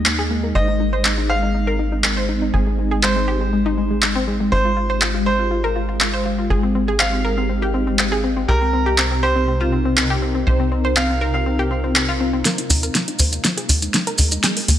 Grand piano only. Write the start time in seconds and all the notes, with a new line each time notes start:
Already playing: D#5
0.55 D#5
1.29 F5
3.03 C5
4.52 C5
5.26 C5
7.00 F5
8.49 A#4
9.23 C5
10.97 F5